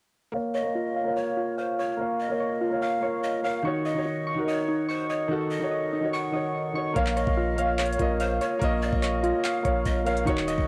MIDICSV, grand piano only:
0, 0, Header, 1, 2, 480
1, 0, Start_track
1, 0, Key_signature, -5, "minor"
1, 0, Tempo, 413793
1, 393, Time_signature, 4, 2, 24, 8
1, 12384, End_track
2, 0, Start_track
2, 0, Title_t, "Grand piano"
2, 0, Program_c, 0, 0
2, 369, Note_on_c, 0, 58, 108
2, 387, Note_on_c, 0, 70, 94
2, 404, Note_on_c, 0, 73, 95
2, 421, Note_on_c, 0, 77, 111
2, 604, Control_c, 0, 64, 127
2, 646, Note_off_c, 0, 58, 0
2, 655, Note_off_c, 0, 70, 0
2, 664, Note_off_c, 0, 73, 0
2, 672, Note_off_c, 0, 77, 0
2, 725, Note_on_c, 0, 58, 84
2, 743, Note_on_c, 0, 70, 76
2, 760, Note_on_c, 0, 73, 78
2, 778, Note_on_c, 0, 77, 95
2, 1093, Note_off_c, 0, 58, 0
2, 1101, Note_off_c, 0, 70, 0
2, 1110, Note_off_c, 0, 73, 0
2, 1119, Note_off_c, 0, 77, 0
2, 1205, Note_on_c, 0, 58, 89
2, 1223, Note_on_c, 0, 70, 78
2, 1240, Note_on_c, 0, 73, 76
2, 1257, Note_on_c, 0, 77, 97
2, 1926, Note_off_c, 0, 58, 0
2, 1935, Note_off_c, 0, 70, 0
2, 1943, Note_off_c, 0, 73, 0
2, 1952, Note_off_c, 0, 77, 0
2, 2287, Note_on_c, 0, 58, 100
2, 2304, Note_on_c, 0, 70, 102
2, 2322, Note_on_c, 0, 73, 93
2, 2339, Note_on_c, 0, 77, 111
2, 2565, Note_off_c, 0, 58, 0
2, 2574, Note_off_c, 0, 70, 0
2, 2582, Note_off_c, 0, 73, 0
2, 2591, Note_off_c, 0, 77, 0
2, 2649, Note_on_c, 0, 58, 92
2, 2666, Note_on_c, 0, 70, 79
2, 2684, Note_on_c, 0, 73, 82
2, 2701, Note_on_c, 0, 77, 93
2, 3015, Note_off_c, 0, 58, 0
2, 3023, Note_off_c, 0, 70, 0
2, 3032, Note_off_c, 0, 73, 0
2, 3040, Note_off_c, 0, 77, 0
2, 3128, Note_on_c, 0, 58, 77
2, 3145, Note_on_c, 0, 70, 79
2, 3163, Note_on_c, 0, 73, 75
2, 3180, Note_on_c, 0, 77, 94
2, 3405, Note_off_c, 0, 58, 0
2, 3414, Note_off_c, 0, 70, 0
2, 3423, Note_off_c, 0, 73, 0
2, 3432, Note_off_c, 0, 77, 0
2, 3488, Note_on_c, 0, 58, 86
2, 3505, Note_on_c, 0, 70, 72
2, 3523, Note_on_c, 0, 73, 76
2, 3539, Note_on_c, 0, 77, 92
2, 3854, Note_off_c, 0, 58, 0
2, 3862, Note_off_c, 0, 70, 0
2, 3871, Note_off_c, 0, 73, 0
2, 3880, Note_off_c, 0, 77, 0
2, 3967, Note_on_c, 0, 58, 76
2, 3984, Note_on_c, 0, 70, 71
2, 4001, Note_on_c, 0, 73, 75
2, 4019, Note_on_c, 0, 77, 90
2, 4157, Note_off_c, 0, 58, 0
2, 4165, Note_off_c, 0, 70, 0
2, 4174, Note_off_c, 0, 73, 0
2, 4183, Note_off_c, 0, 77, 0
2, 4206, Note_on_c, 0, 51, 108
2, 4224, Note_on_c, 0, 63, 98
2, 4242, Note_on_c, 0, 66, 99
2, 4249, Control_c, 0, 64, 0
2, 4259, Note_on_c, 0, 73, 107
2, 4423, Control_c, 0, 64, 127
2, 4485, Note_off_c, 0, 51, 0
2, 4494, Note_off_c, 0, 63, 0
2, 4502, Note_off_c, 0, 66, 0
2, 4511, Note_off_c, 0, 73, 0
2, 4571, Note_on_c, 0, 51, 80
2, 4588, Note_on_c, 0, 63, 70
2, 4606, Note_on_c, 0, 66, 79
2, 4623, Note_on_c, 0, 73, 103
2, 4935, Note_off_c, 0, 51, 0
2, 4944, Note_off_c, 0, 63, 0
2, 4953, Note_off_c, 0, 66, 0
2, 4961, Note_off_c, 0, 73, 0
2, 5046, Note_on_c, 0, 51, 83
2, 5063, Note_on_c, 0, 63, 72
2, 5081, Note_on_c, 0, 66, 78
2, 5098, Note_on_c, 0, 70, 100
2, 5766, Note_off_c, 0, 51, 0
2, 5775, Note_off_c, 0, 63, 0
2, 5784, Note_off_c, 0, 66, 0
2, 5792, Note_off_c, 0, 70, 0
2, 6126, Note_on_c, 0, 51, 112
2, 6143, Note_on_c, 0, 63, 93
2, 6161, Note_on_c, 0, 66, 103
2, 6178, Note_on_c, 0, 69, 106
2, 6405, Note_off_c, 0, 51, 0
2, 6413, Note_off_c, 0, 63, 0
2, 6422, Note_off_c, 0, 66, 0
2, 6431, Note_off_c, 0, 69, 0
2, 6487, Note_on_c, 0, 51, 84
2, 6505, Note_on_c, 0, 63, 84
2, 6522, Note_on_c, 0, 66, 80
2, 6539, Note_on_c, 0, 73, 97
2, 6854, Note_off_c, 0, 51, 0
2, 6862, Note_off_c, 0, 63, 0
2, 6871, Note_off_c, 0, 66, 0
2, 6880, Note_off_c, 0, 73, 0
2, 6968, Note_on_c, 0, 51, 78
2, 6984, Note_on_c, 0, 63, 76
2, 7002, Note_on_c, 0, 66, 75
2, 7020, Note_on_c, 0, 73, 88
2, 7245, Note_off_c, 0, 51, 0
2, 7254, Note_off_c, 0, 63, 0
2, 7263, Note_off_c, 0, 66, 0
2, 7272, Note_off_c, 0, 73, 0
2, 7326, Note_on_c, 0, 51, 81
2, 7344, Note_on_c, 0, 63, 76
2, 7361, Note_on_c, 0, 66, 72
2, 7378, Note_on_c, 0, 73, 93
2, 7693, Note_off_c, 0, 51, 0
2, 7702, Note_off_c, 0, 63, 0
2, 7710, Note_off_c, 0, 66, 0
2, 7719, Note_off_c, 0, 73, 0
2, 7809, Note_on_c, 0, 51, 73
2, 7826, Note_on_c, 0, 63, 71
2, 7844, Note_on_c, 0, 66, 67
2, 7861, Note_on_c, 0, 73, 85
2, 7998, Note_off_c, 0, 51, 0
2, 8006, Note_off_c, 0, 63, 0
2, 8015, Note_off_c, 0, 66, 0
2, 8024, Note_off_c, 0, 73, 0
2, 8046, Note_on_c, 0, 58, 109
2, 8064, Note_on_c, 0, 70, 98
2, 8081, Note_on_c, 0, 73, 106
2, 8087, Control_c, 0, 64, 0
2, 8098, Note_on_c, 0, 77, 117
2, 8269, Control_c, 0, 64, 127
2, 8590, Note_off_c, 0, 58, 0
2, 8599, Note_off_c, 0, 70, 0
2, 8607, Note_off_c, 0, 73, 0
2, 8616, Note_off_c, 0, 77, 0
2, 8766, Note_on_c, 0, 58, 93
2, 8784, Note_on_c, 0, 70, 80
2, 8801, Note_on_c, 0, 73, 77
2, 8818, Note_on_c, 0, 77, 105
2, 9133, Note_off_c, 0, 58, 0
2, 9142, Note_off_c, 0, 70, 0
2, 9150, Note_off_c, 0, 73, 0
2, 9159, Note_off_c, 0, 77, 0
2, 9247, Note_on_c, 0, 58, 91
2, 9264, Note_on_c, 0, 70, 80
2, 9282, Note_on_c, 0, 73, 77
2, 9300, Note_on_c, 0, 75, 100
2, 9790, Note_off_c, 0, 58, 0
2, 9799, Note_off_c, 0, 70, 0
2, 9807, Note_off_c, 0, 73, 0
2, 9817, Note_off_c, 0, 75, 0
2, 9968, Note_on_c, 0, 58, 124
2, 9985, Note_on_c, 0, 70, 106
2, 10003, Note_on_c, 0, 73, 100
2, 10021, Note_on_c, 0, 75, 127
2, 10687, Note_off_c, 0, 58, 0
2, 10696, Note_off_c, 0, 70, 0
2, 10705, Note_off_c, 0, 73, 0
2, 10714, Note_off_c, 0, 75, 0
2, 11169, Note_on_c, 0, 58, 89
2, 11187, Note_on_c, 0, 70, 76
2, 11204, Note_on_c, 0, 73, 79
2, 11221, Note_on_c, 0, 77, 95
2, 11534, Note_off_c, 0, 58, 0
2, 11543, Note_off_c, 0, 70, 0
2, 11552, Note_off_c, 0, 73, 0
2, 11561, Note_off_c, 0, 77, 0
2, 11647, Note_on_c, 0, 58, 87
2, 11664, Note_on_c, 0, 70, 82
2, 11681, Note_on_c, 0, 73, 84
2, 11699, Note_on_c, 0, 77, 97
2, 11837, Note_off_c, 0, 58, 0
2, 11845, Note_off_c, 0, 70, 0
2, 11854, Note_off_c, 0, 73, 0
2, 11863, Note_off_c, 0, 77, 0
2, 11887, Note_on_c, 0, 51, 113
2, 11904, Note_on_c, 0, 63, 104
2, 11922, Note_on_c, 0, 66, 104
2, 11929, Control_c, 0, 64, 0
2, 11939, Note_on_c, 0, 73, 119
2, 12138, Control_c, 0, 64, 127
2, 12384, Note_off_c, 0, 51, 0
2, 12384, Note_off_c, 0, 63, 0
2, 12384, Note_off_c, 0, 66, 0
2, 12384, Note_off_c, 0, 73, 0
2, 12384, End_track
0, 0, End_of_file